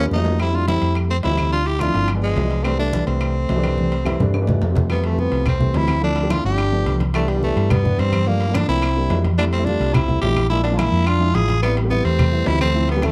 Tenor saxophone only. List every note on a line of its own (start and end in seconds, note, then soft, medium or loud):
0.13 0.39 D#4 medium
0.41 0.57 E4 medium
0.56 0.68 F4 medium
0.68 0.94 E4 medium
1.10 1.17 C4 medium
1.24 1.50 E4 medium
1.52 1.68 F4 loud
1.66 1.81 G4 medium
1.80 2.08 F4 loud
2.23 2.65 G#3 medium
2.64 2.78 C4 medium
2.79 3.05 D4 medium
3.07 4.58 C4 medium
4.91 5.04 B3 medium
5.06 5.21 A3 medium
5.19 5.47 B3 medium
5.48 5.78 C4 medium
5.76 6.03 E4 medium
6.04 6.32 D4 medium
6.31 6.45 F4 loud
6.45 6.97 G4 medium
7.15 7.30 A3 medium
7.29 7.43 G3 medium
7.43 7.73 A3 medium
7.71 8.01 B3 medium
7.99 8.29 C4 loud
8.27 8.56 A#3 medium
8.55 8.68 D4 medium
8.69 9.21 E4 medium
9.38 9.44 D4 medium
9.53 9.66 C4 medium
9.65 9.95 D4 medium
9.93 10.21 E4 medium
10.21 10.48 G4 loud
10.50 10.63 E4 loud
10.63 10.79 D4 medium
10.77 11.08 E4 loud
11.06 11.36 F4 medium
11.35 11.62 G#4 loud
11.63 11.76 B3 loud
11.90 12.06 B3 loud
12.05 12.48 C4 loud
12.47 12.60 E4 loud
12.61 12.87 C4 loud
12.91 13.06 B3 medium
13.05 13.12 A3 medium